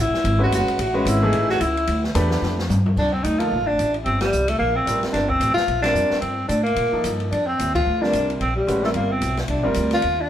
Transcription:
0.00 0.12 A1 loud
0.00 0.42 E4 medium
0.13 muted upright bass stroke soft
0.13 snare soft
0.24 0.51 G#1 loud
0.24 ride medium
0.39 0.76 G#3 medium
0.39 0.76 C#4 medium
0.39 0.76 F#4 medium
0.39 0.76 B4 medium
0.43 0.52 F#4 loud
0.51 0.66 F#1 medium
0.51 0.80 F#4 medium
0.51 hi-hat pedal medium
0.51 ride medium
0.68 muted upright bass stroke soft
0.68 ride medium
0.78 1.05 A1 medium
0.78 1.10 F#4 medium
0.78 ride medium
0.94 1.20 G#3 medium
0.94 1.20 C#4 medium
0.94 1.20 F#4 medium
0.94 1.21 B4 medium
1.05 1.32 G#1 loud
1.05 1.50 E4 medium
1.05 hi-hat pedal medium
1.05 ride medium
1.22 1.58 E3 medium
1.22 1.58 A3 medium
1.22 1.59 D#4 medium
1.22 1.59 G#4 medium
1.33 1.59 A1 medium
1.33 ride medium
1.49 1.62 F#4 loud
1.49 snare soft
1.60 1.87 C#2 medium
1.60 2.04 E4 medium
1.60 hi-hat pedal medium
1.60 ride medium
1.77 ride soft
1.87 2.14 D2 medium
1.87 ride medium
2.04 snare soft
2.15 2.41 E2 loud
2.15 2.55 A3 medium
2.15 2.55 D4 medium
2.15 2.55 G4 medium
2.15 2.55 B4 medium
2.15 hi-hat pedal medium
2.15 ride medium
2.31 snare medium
2.42 2.68 F2 loud
2.42 snare medium
2.59 snare medium
2.70 2.96 G2 loud
2.70 hi-hat pedal medium
2.70 high tom medium
2.86 floor tom medium
2.96 3.23 C2 medium
2.96 3.15 D4 medium
2.96 kick medium
2.96 crash medium
3.13 3.25 C4 medium
3.24 3.50 D2 medium
3.24 3.41 D#4 medium
3.24 hi-hat pedal soft
3.24 ride medium
3.39 3.49 F3 medium
3.39 3.49 A#3 medium
3.39 3.50 D#4 medium
3.39 3.68 F4 loud
3.39 3.50 A4 medium
3.39 ride medium
3.51 3.61 A#1 medium
3.61 3.69 G1 medium
3.67 3.78 F1 medium
3.67 3.94 D4 medium
3.79 4.05 A1 medium
3.79 hi-hat pedal soft
3.79 ride medium
3.94 ride soft
4.05 4.32 G1 medium
4.05 4.20 C4 medium
4.05 ride soft
4.21 4.51 G3 medium
4.21 snare medium
4.21 ride medium
4.32 4.59 C2 medium
4.32 hi-hat pedal medium
4.48 4.58 A3 loud
4.48 ride medium
4.58 4.85 A#1 medium
4.58 4.77 A#3 medium
4.76 5.03 C4 medium
4.86 5.01 A1 medium
4.86 5.26 G3 medium
4.86 5.27 C4 medium
4.86 5.27 F4 medium
4.86 5.27 A#4 medium
4.86 hi-hat pedal medium
4.86 ride medium
5.03 muted upright bass stroke soft
5.03 snare soft
5.03 ride soft
5.13 5.39 G1 medium
5.13 5.30 D4 medium
5.13 snare soft
5.13 ride medium
5.29 5.54 C4 medium
5.29 kick soft
5.40 5.55 A1 medium
5.40 hi-hat pedal medium
5.40 ride medium
5.54 5.81 F4 loud
5.54 muted upright bass stroke soft
5.54 snare medium
5.67 5.93 A#1 medium
5.67 ride medium
5.82 6.20 G3 medium
5.82 6.21 C4 medium
5.82 6.19 D4 loud
5.82 6.21 F4 medium
5.82 6.21 A#4 medium
5.82 snare medium
5.82 ride medium
5.94 6.09 F2 medium
5.94 hi-hat pedal soft
6.10 muted upright bass stroke soft
6.10 snare soft
6.21 6.48 G2 medium
6.21 6.47 C4 medium
6.21 ride medium
6.48 6.75 A2 medium
6.48 6.63 D4 medium
6.48 hi-hat pedal medium
6.48 ride medium
6.63 7.15 A#3 loud
6.63 ride soft
6.76 6.91 A#2 medium
6.76 ride medium
6.92 7.29 F3 medium
6.92 7.29 A#3 medium
6.92 7.29 D#4 medium
6.92 7.30 A4 medium
6.92 muted upright bass stroke soft
7.04 7.31 G2 medium
7.04 hi-hat pedal medium
7.04 ride medium
7.20 ride soft
7.31 7.58 F2 medium
7.31 7.49 D4 medium
7.31 ride medium
7.47 7.74 C4 medium
7.59 7.85 D#2 medium
7.59 hi-hat pedal medium
7.59 ride medium
7.75 8.04 F4 medium
7.75 kick medium
7.75 ride medium
7.86 8.12 D2 medium
8.01 8.38 G3 medium
8.01 8.38 C4 medium
8.01 8.29 D4 loud
8.01 8.38 F4 medium
8.01 8.38 A#4 medium
8.01 snare soft
8.13 8.39 C2 medium
8.13 hi-hat pedal soft
8.13 ride medium
8.30 ride soft
8.40 8.67 A#1 medium
8.40 8.56 C4 medium
8.40 ride medium
8.56 8.81 G3 medium
8.67 8.94 A1 medium
8.67 8.82 G#3 medium
8.67 8.82 C#4 medium
8.67 8.82 F#4 medium
8.67 8.82 B4 medium
8.67 hi-hat pedal soft
8.67 ride medium
8.82 9.07 G3 medium
8.82 8.89 A3 medium
8.82 9.07 C4 medium
8.82 9.07 F4 medium
8.82 9.07 A#4 medium
8.82 snare soft
8.94 9.20 G1 medium
8.94 9.13 A#3 medium
8.94 ride medium
9.12 9.38 C4 medium
9.21 9.48 B1 medium
9.21 hi-hat pedal medium
9.21 ride medium
9.37 snare soft
9.37 ride soft
9.48 9.57 C2 medium
9.48 9.64 D4 medium
9.48 ride medium
9.57 9.66 A#1 medium
9.63 9.75 F1 medium
9.63 10.00 G3 medium
9.63 10.00 C4 medium
9.63 10.01 F4 medium
9.63 10.01 A#4 medium
9.74 10.02 D2 medium
9.74 hi-hat pedal medium
9.74 ride medium
9.91 10.22 F4 loud
9.91 snare soft
9.91 ride soft
10.02 10.29 D#2 medium
10.02 ride medium
10.21 10.29 D4 loud

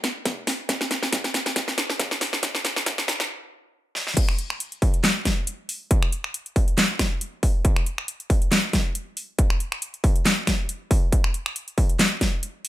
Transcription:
0.04 snare medium
0.04 closed hi-hat medium
0.25 kick loud
0.25 snare medium
0.25 closed hi-hat medium
0.47 snare medium
0.47 open hi-hat medium
0.69 kick medium
0.69 snare loud
0.69 closed hi-hat medium
0.81 snare medium
0.91 snare medium
0.91 closed hi-hat medium
1.03 snare medium
1.12 kick loud
1.12 snare loud
1.12 closed hi-hat medium
1.24 snare medium
1.24 closed hi-hat soft
1.34 snare loud
1.34 closed hi-hat medium
1.46 snare medium
1.46 closed hi-hat soft
1.56 kick loud
1.56 snare medium
1.56 closed hi-hat medium
1.68 snare medium
1.78 snare loud
1.78 closed hi-hat medium
1.90 snare medium
1.99 kick loud
1.99 snare loud
1.99 closed hi-hat medium
2.11 snare medium
2.21 snare loud
2.21 open hi-hat medium
2.33 snare medium
2.43 kick medium
2.43 snare loud
2.43 closed hi-hat medium
2.55 snare medium
2.65 snare loud
2.65 closed hi-hat medium
2.76 snare medium
2.86 kick loud
2.86 snare loud
2.86 closed hi-hat medium
2.98 snare medium
2.98 closed hi-hat soft
3.08 snare loud
3.08 open hi-hat medium
3.20 snare medium
3.20 closed hi-hat soft
3.95 snare medium
4.07 snare medium
4.17 kick loud
4.17 closed hi-hat medium
4.17 crash loud
4.29 finger snap medium
4.39 closed hi-hat medium
4.50 finger snap medium
4.60 closed hi-hat medium
4.72 closed hi-hat soft
4.82 kick loud
4.82 open hi-hat medium
4.94 closed hi-hat soft
5.04 snare loud
5.04 clap medium
5.04 closed hi-hat medium
5.25 kick medium
5.25 snare medium
5.25 closed hi-hat medium
5.47 closed hi-hat medium
5.69 open hi-hat medium
5.91 kick loud
5.91 closed hi-hat medium
6.03 finger snap medium
6.12 closed hi-hat medium
6.24 finger snap medium
6.34 closed hi-hat medium
6.46 closed hi-hat soft
6.56 kick loud
6.56 open hi-hat medium
6.68 closed hi-hat soft
6.78 snare loud
6.78 clap medium
6.78 closed hi-hat medium
6.99 finger snap medium
6.99 kick medium
6.99 snare medium
6.99 closed hi-hat medium
7.21 closed hi-hat medium
7.43 kick loud
7.43 open hi-hat medium
7.65 kick loud
7.65 closed hi-hat medium
7.76 finger snap medium
7.86 closed hi-hat medium
7.98 finger snap medium
8.08 closed hi-hat medium
8.20 closed hi-hat soft
8.30 kick loud
8.30 open hi-hat medium
8.42 closed hi-hat soft
8.52 snare loud
8.52 clap medium
8.52 closed hi-hat medium
8.73 kick medium
8.73 snare medium
8.73 closed hi-hat medium
8.95 closed hi-hat medium
9.17 open hi-hat medium
9.39 kick loud
9.39 closed hi-hat medium
9.50 finger snap medium
9.60 closed hi-hat medium
9.72 finger snap medium
9.82 closed hi-hat medium
9.94 closed hi-hat soft
10.04 kick loud
10.04 open hi-hat medium
10.16 closed hi-hat soft
10.26 snare loud
10.26 clap medium
10.26 closed hi-hat medium
10.47 finger snap medium
10.47 kick medium
10.47 snare medium
10.47 closed hi-hat medium
10.69 closed hi-hat medium
10.91 kick loud
10.91 open hi-hat medium
11.12 kick loud
11.12 closed hi-hat medium
11.24 finger snap medium
11.34 closed hi-hat medium
11.46 finger snap medium
11.56 closed hi-hat medium
11.68 closed hi-hat soft
11.78 kick loud
11.78 open hi-hat medium
11.89 closed hi-hat soft
11.99 snare loud
11.99 clap medium
11.99 closed hi-hat medium
12.21 kick medium
12.21 snare medium
12.21 closed hi-hat medium
12.43 closed hi-hat medium
12.65 open hi-hat medium

